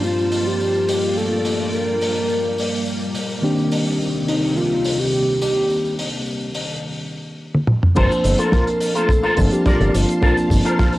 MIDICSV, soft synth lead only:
0, 0, Header, 1, 2, 480
1, 0, Start_track
1, 0, Key_signature, -2, "minor"
1, 0, Tempo, 566038
1, 992, Time_signature, 4, 2, 24, 8
1, 9317, End_track
2, 0, Start_track
2, 0, Title_t, "Soft synth lead"
2, 0, Program_c, 0, 80
2, 35, Note_on_c, 0, 65, 94
2, 395, Note_on_c, 0, 67, 99
2, 408, Note_off_c, 0, 65, 0
2, 746, Note_off_c, 0, 67, 0
2, 752, Note_on_c, 0, 67, 91
2, 995, Note_on_c, 0, 69, 108
2, 1008, Note_off_c, 0, 67, 0
2, 1472, Note_on_c, 0, 70, 102
2, 1485, Note_off_c, 0, 69, 0
2, 2432, Note_off_c, 0, 70, 0
2, 3631, Note_on_c, 0, 63, 91
2, 3871, Note_on_c, 0, 65, 108
2, 3884, Note_off_c, 0, 63, 0
2, 4232, Note_on_c, 0, 67, 107
2, 4245, Note_off_c, 0, 65, 0
2, 4588, Note_off_c, 0, 67, 0
2, 4593, Note_on_c, 0, 67, 96
2, 5039, Note_off_c, 0, 67, 0
2, 6752, Note_on_c, 0, 72, 118
2, 7115, Note_on_c, 0, 69, 102
2, 7128, Note_off_c, 0, 72, 0
2, 7234, Note_on_c, 0, 70, 108
2, 7247, Note_off_c, 0, 69, 0
2, 7593, Note_on_c, 0, 69, 101
2, 7605, Note_off_c, 0, 70, 0
2, 8075, Note_on_c, 0, 67, 97
2, 8088, Note_off_c, 0, 69, 0
2, 8435, Note_on_c, 0, 65, 86
2, 8448, Note_off_c, 0, 67, 0
2, 8914, Note_off_c, 0, 65, 0
2, 9317, End_track
0, 0, End_of_file